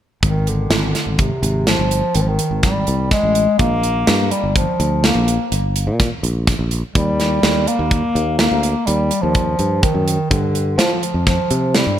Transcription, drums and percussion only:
0.23 kick, closed hi-hat
0.47 closed hi-hat
0.71 snare, closed hi-hat
0.95 snare, closed hi-hat
1.19 kick, closed hi-hat
1.43 closed hi-hat
1.67 snare, closed hi-hat
1.91 closed hi-hat
2.15 closed hi-hat
2.39 closed hi-hat
2.63 kick, snare, closed hi-hat
2.87 closed hi-hat
3.11 kick, snare, closed hi-hat
3.35 closed hi-hat
3.59 kick, closed hi-hat
3.83 closed hi-hat
4.07 snare, closed hi-hat
4.31 closed hi-hat
4.56 kick, closed hi-hat
4.80 closed hi-hat
5.04 snare, closed hi-hat
5.28 closed hi-hat
5.52 closed hi-hat
5.76 closed hi-hat
6.00 kick, snare, closed hi-hat
6.24 closed hi-hat
6.47 kick, snare, closed hi-hat
6.71 closed hi-hat
6.95 kick, closed hi-hat
7.20 snare, closed hi-hat
7.43 snare, closed hi-hat
7.67 closed hi-hat
7.91 kick, closed hi-hat
8.16 closed hi-hat
8.39 snare, closed hi-hat
8.63 closed hi-hat
8.87 closed hi-hat
9.11 closed hi-hat
9.35 kick, closed hi-hat
9.59 closed hi-hat
9.83 kick, closed hi-hat
10.08 closed hi-hat
10.31 kick, closed hi-hat
10.55 closed hi-hat
10.79 snare, closed hi-hat
11.03 closed hi-hat
11.27 kick, snare, closed hi-hat
11.51 closed hi-hat
11.75 snare, closed hi-hat

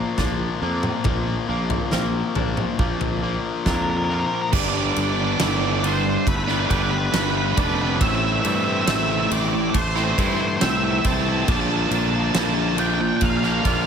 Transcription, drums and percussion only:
0.18 kick, snare, floor tom
0.83 mid tom
1.04 kick, floor tom
1.70 floor tom
1.92 snare
2.35 floor tom
2.57 mid tom
2.79 kick
3.01 floor tom
3.66 kick, snare, floor tom
4.53 kick, crash
4.96 ride
5.40 snare, ride
5.84 ride
6.27 kick, ride
6.49 snare
6.70 kick, ride
7.14 snare, ride
7.57 kick, ride
8.01 kick, ride
8.45 ride
8.88 snare, ride
9.31 ride
9.74 kick, ride
9.96 snare
10.18 kick, ride
10.61 snare, ride
11.04 kick, ride
11.48 kick, ride
11.91 ride
12.35 snare, ride
12.78 ride
13.21 kick, ride
13.43 snare
13.65 kick, ride

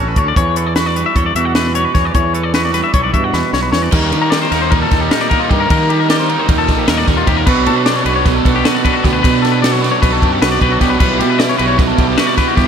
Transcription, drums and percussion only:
0.16 kick, closed hi-hat
0.36 kick, closed hi-hat
0.56 closed hi-hat
0.76 snare, closed hi-hat
0.96 closed hi-hat
1.16 kick, closed hi-hat
1.36 closed hi-hat
1.55 snare, closed hi-hat
1.75 closed hi-hat
1.95 kick, snare, closed hi-hat
2.15 kick, closed hi-hat
2.34 closed hi-hat
2.54 snare, closed hi-hat
2.74 snare, closed hi-hat
2.94 kick, closed hi-hat
3.14 kick, closed hi-hat
3.33 snare
3.53 snare
3.73 snare
3.92 kick, crash
4.12 ride
4.32 snare, ride
4.52 snare, ride
4.72 kick, ride
4.91 kick, snare, ride
5.11 snare, ride
5.31 kick, ride
5.51 kick, ride
5.70 kick, ride
5.90 ride
6.10 snare, ride
6.30 ride
6.49 kick, ride
6.69 kick, snare, ride
6.88 snare, ride
7.08 kick, snare, ride
7.27 kick, ride
7.47 kick, crash
7.66 ride
7.86 snare, ride
8.06 ride
8.26 kick, snare, ride
8.45 kick, ride
8.65 snare, ride
8.85 kick, ride
9.05 kick, snare, ride
9.24 kick, ride
9.45 snare, ride
9.64 snare, ride
9.84 snare, ride
10.03 kick, ride
10.22 kick, ride
10.42 snare, ride
10.61 kick, ride
10.81 kick, snare, ride
11.00 kick, crash
11.21 ride
11.40 snare, ride
11.59 ride
11.79 kick, snare, ride
11.98 kick, ride
12.18 snare, ride
12.38 kick, snare, ride
12.57 kick, snare, ride

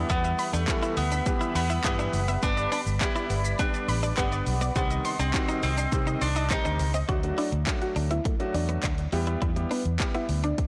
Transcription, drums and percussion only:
0.10 kick, closed hi-hat, shaker
0.24 shaker
0.39 open hi-hat, shaker
0.54 shaker
0.68 kick, clap, closed hi-hat, shaker
0.83 shaker
0.97 open hi-hat, shaker
1.12 shaker
1.26 kick, closed hi-hat, shaker
1.41 shaker
1.56 open hi-hat, shaker
1.70 shaker
1.84 kick, clap, closed hi-hat, shaker
1.99 shaker
2.13 open hi-hat, shaker
2.28 shaker
2.43 kick, closed hi-hat, shaker
2.57 shaker
2.72 open hi-hat, shaker
2.87 shaker
3.01 kick, clap, closed hi-hat, shaker
3.16 shaker
3.30 open hi-hat, shaker
3.45 shaker
3.59 kick, closed hi-hat, shaker
3.74 shaker
3.89 open hi-hat, shaker
4.03 shaker
4.18 kick, clap, closed hi-hat, shaker
4.32 shaker
4.47 open hi-hat, shaker
4.61 shaker
4.76 kick, closed hi-hat, shaker
4.90 shaker
5.05 open hi-hat, shaker
5.20 shaker
5.34 kick, clap, closed hi-hat, shaker
5.49 shaker
5.63 open hi-hat, shaker
5.78 shaker
5.92 kick, closed hi-hat, shaker
6.07 shaker
6.21 open hi-hat, shaker
6.36 shaker
6.50 kick, clap, closed hi-hat, shaker
6.65 shaker
6.79 open hi-hat, shaker
6.94 shaker
7.09 kick, closed hi-hat
7.23 closed hi-hat
7.38 open hi-hat
7.52 closed hi-hat
7.67 kick, clap, closed hi-hat
7.82 closed hi-hat
7.96 open hi-hat
8.11 closed hi-hat
8.25 kick, closed hi-hat
8.40 closed hi-hat
8.54 open hi-hat
8.69 closed hi-hat
8.83 kick, clap, closed hi-hat
8.98 closed hi-hat
9.12 open hi-hat
9.27 closed hi-hat
9.42 kick, closed hi-hat
9.56 closed hi-hat
9.71 open hi-hat
9.85 closed hi-hat
10.00 kick, clap, closed hi-hat
10.14 closed hi-hat
10.29 open hi-hat
10.44 closed hi-hat
10.58 kick, closed hi-hat

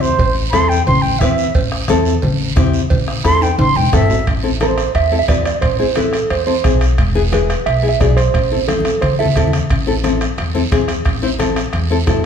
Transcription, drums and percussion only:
0.03 short guiro
0.19 bombo low, cowbell, long guiro
0.53 bombo rim, cowbell, high conga, short guiro
0.71 short guiro
0.87 cowbell, low conga, long guiro
1.04 high conga
1.21 bombo low, bombo rim, cowbell, high conga, short guiro
1.38 short guiro
1.55 bombo low, cowbell, long guiro
1.72 bombo rim
1.88 bombo rim, cowbell, high conga, short guiro
2.05 short guiro
2.22 cowbell, low conga, long guiro
2.56 bombo low, bombo rim, cowbell, high conga, low conga, short guiro
2.73 short guiro
2.90 bombo low, cowbell, low conga, long guiro
3.08 bombo rim
3.24 bombo rim, cowbell, high conga, short guiro
3.41 high timbale, short guiro
3.59 cowbell, low conga, high timbale, long guiro
3.76 high conga
3.93 bombo low, bombo rim, cowbell, high conga, short guiro
4.10 low timbale, short guiro
4.27 bombo low, bombo rim, high timbale, long guiro
4.60 bombo rim, high conga, high timbale, short guiro
4.78 bombo rim, high timbale, short guiro
4.95 bombo rim, high timbale, long guiro
5.28 bombo low, bombo rim, high conga, high timbale, low timbale, short guiro
5.45 bombo rim, high timbale, short guiro
5.62 bombo low, bombo rim, high timbale, long guiro
5.96 bombo rim, high conga, high timbale, short guiro
6.13 bombo rim, high timbale, short guiro
6.30 bombo rim, high timbale, long guiro
6.64 bombo low, bombo rim, high conga, high timbale, short guiro
6.81 bombo rim, high timbale, short guiro
6.98 bombo low, bombo rim, high timbale, long guiro
7.33 bombo rim, high conga, high timbale, short guiro
7.50 bombo rim, high timbale, short guiro
7.66 bombo rim, high timbale, long guiro
8.00 bombo low, bombo rim, high conga, high timbale, low timbale, short guiro
8.17 bombo rim, high timbale, short guiro
8.34 bombo low, bombo rim, high timbale, long guiro
8.68 bombo rim, high conga, high timbale, short guiro
8.80 high conga
8.85 bombo rim, high timbale, short guiro
9.02 bombo rim, low conga, high timbale, long guiro
9.26 low conga
9.36 bombo low, bombo rim, high timbale, short guiro
9.48 low conga
9.53 bombo rim, high timbale, short guiro
9.59 low conga
9.70 bombo low, bombo rim, high timbale, long guiro
10.04 bombo rim, high conga, high timbale, short guiro
10.21 bombo rim, high timbale, short guiro
10.38 bombo rim, high timbale, long guiro
10.55 high conga
10.72 bombo low, bombo rim, high conga, high timbale, short guiro
10.88 bombo rim, high timbale, short guiro
11.05 bombo low, bombo rim, high timbale, long guiro
11.40 bombo rim, high conga, high timbale, short guiro
11.56 bombo rim, high timbale, short guiro
11.73 bombo rim, high timbale, long guiro
12.07 bombo low, bombo rim, high conga, high timbale, low timbale, short guiro

